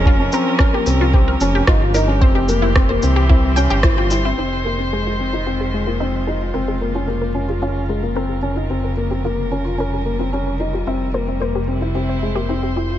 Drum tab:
SH |-x-x-x-x|-x-x-x-x|--------|--------|
SD |--r---r-|--r---r-|--------|--------|
BD |o-o-o-o-|o-o-o-o-|--------|--------|

SH |--------|--------|
SD |--------|--------|
BD |--------|--------|